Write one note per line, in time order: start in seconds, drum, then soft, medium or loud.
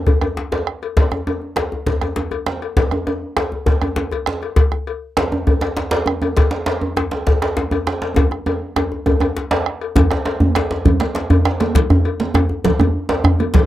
0.07 bombo low medium
0.07 cowbell soft
0.07 djembe tone medium
0.07 djembe bass medium
0.21 bombo rim medium
0.21 cowbell soft
0.21 djembe tone medium
0.37 djembe slap medium
0.52 cowbell soft
0.52 djembe slap medium
0.52 djembe tone medium
0.67 bombo rim medium
0.82 cowbell soft
0.82 djembe slap soft
0.97 bombo low medium
0.97 cowbell medium
0.97 djembe slap medium
0.97 djembe bass medium
1.12 bombo rim medium
1.12 djembe tone medium
1.12 djembe tone soft
1.27 cowbell soft
1.27 djembe tone medium
1.41 djembe slap soft
1.56 bombo rim medium
1.56 cowbell soft
1.56 djembe slap medium
1.72 djembe tone medium
1.86 bombo low medium
1.86 cowbell soft
1.86 djembe slap medium
1.86 djembe bass medium
2.01 bombo rim medium
2.01 cowbell soft
2.01 djembe slap soft
2.01 djembe tone medium
2.16 djembe slap medium
2.16 djembe tone medium
2.31 cowbell soft
2.31 djembe tone medium
2.46 bombo rim medium
2.46 djembe slap medium
2.46 djembe slap soft
2.62 cowbell soft
2.62 djembe slap soft
2.77 bombo low medium
2.77 cowbell medium
2.77 djembe slap medium
2.77 djembe bass medium
2.91 bombo rim medium
2.91 djembe tone medium
3.07 cowbell soft
3.07 djembe tone medium
3.37 bombo rim medium
3.37 cowbell soft
3.37 djembe slap medium
3.52 djembe tone medium
3.66 bombo low medium
3.66 cowbell soft
3.66 djembe slap medium
3.66 djembe bass medium
3.82 bombo rim medium
3.82 cowbell soft
3.82 djembe tone medium
3.96 djembe slap medium
3.96 djembe tone medium
4.11 cowbell soft
4.11 djembe tone medium
4.26 bombo rim medium
4.26 djembe slap medium
4.42 cowbell soft
4.42 djembe slap soft
4.56 bombo low medium
4.56 cowbell medium
4.56 djembe slap medium
4.56 djembe bass medium
4.72 bombo rim medium
4.72 djembe tone medium
4.87 cowbell soft
5.17 bombo rim medium
5.17 cowbell soft
5.17 djembe slap medium
5.32 djembe tone medium
5.47 bombo low medium
5.47 cowbell soft
5.47 djembe tone medium
5.47 djembe bass medium
5.61 bombo rim medium
5.61 cowbell soft
5.61 djembe slap medium
5.77 djembe slap medium
5.91 cowbell medium
5.91 djembe slap loud
5.91 djembe tone medium
6.06 bombo rim medium
6.06 djembe tone medium
6.22 cowbell soft
6.22 djembe slap soft
6.22 djembe tone medium
6.36 bombo low medium
6.36 cowbell medium
6.36 djembe slap medium
6.36 djembe bass medium
6.51 djembe slap medium
6.51 djembe tone medium
6.66 cowbell soft
6.66 djembe slap medium
6.81 djembe tone medium
6.97 bombo rim medium
6.97 cowbell soft
6.97 djembe slap medium
6.97 djembe tone medium
7.11 djembe slap medium
7.11 djembe tone soft
7.27 bombo low medium
7.27 cowbell medium
7.27 djembe slap medium
7.27 djembe bass medium
7.42 bombo rim medium
7.42 cowbell soft
7.42 djembe slap medium
7.57 djembe slap medium
7.57 djembe tone medium
7.71 cowbell medium
7.71 djembe tone medium
7.87 bombo rim medium
7.87 djembe slap medium
8.02 cowbell soft
8.02 djembe slap medium
8.02 djembe slap soft
8.16 bombo low medium
8.16 cowbell medium
8.16 djembe slap medium
8.16 djembe tone medium
8.16 djembe bass medium
8.31 bombo rim medium
8.31 djembe slap soft
8.31 djembe tone medium
8.46 cowbell soft
8.46 djembe tone medium
8.76 bombo rim medium
8.76 cowbell soft
8.76 djembe slap medium
8.76 djembe tone medium
8.92 djembe tone soft
9.06 bombo rim soft
9.06 bombo low medium
9.06 cowbell soft
9.06 djembe tone medium
9.06 djembe bass medium
9.20 bombo rim medium
9.20 cowbell soft
9.20 djembe tone medium
9.37 djembe slap medium
9.51 bombo rim soft
9.51 cowbell soft
9.51 djembe slap loud
9.51 djembe tone soft
9.66 bombo rim medium
9.81 cowbell soft
9.96 bombo low loud
9.96 cowbell medium
9.96 djembe slap medium
9.96 djembe bass loud
9.96 djembe bass medium
9.96 low conga medium
10.11 bombo rim medium
10.11 djembe slap medium
10.11 djembe tone medium
10.25 cowbell soft
10.25 djembe slap medium
10.40 high conga medium
10.40 djembe bass medium
10.55 bombo rim medium
10.55 cowbell soft
10.55 djembe slap medium
10.55 high conga soft
10.71 djembe slap medium
10.71 djembe tone medium
10.85 bombo low loud
10.85 cowbell soft
10.85 high conga soft
10.85 djembe bass loud
10.85 djembe bass medium
10.85 low conga medium
11.00 bombo rim medium
11.00 cowbell soft
11.00 djembe slap medium
11.00 high conga medium
11.15 djembe slap medium
11.30 cowbell medium
11.30 djembe tone medium
11.30 djembe bass loud
11.45 bombo rim medium
11.45 djembe slap medium
11.60 cowbell soft
11.60 djembe slap medium
11.60 high conga medium
11.75 bombo low loud
11.75 cowbell medium
11.75 djembe slap medium
11.75 djembe bass medium
11.75 low conga medium
11.90 bombo rim medium
11.90 djembe tone medium
11.90 djembe bass loud
12.05 cowbell soft
12.20 djembe slap medium
12.20 high conga medium
12.34 bombo rim medium
12.34 cowbell soft
12.34 djembe slap medium
12.34 high conga soft
12.34 djembe bass medium
12.49 djembe tone medium
12.64 bombo low medium
12.64 cowbell medium
12.64 djembe slap medium
12.64 high conga soft
12.64 djembe bass medium
12.64 low conga medium
12.79 bombo rim medium
12.79 cowbell soft
12.79 high conga medium
12.79 djembe bass medium
13.09 cowbell medium
13.09 djembe slap medium
13.09 djembe tone medium
13.24 bombo rim medium
13.24 djembe bass loud
13.39 cowbell soft
13.39 djembe slap soft
13.39 high conga medium
13.54 bombo low loud
13.54 cowbell medium
13.54 djembe slap medium
13.54 djembe bass medium
13.54 low conga medium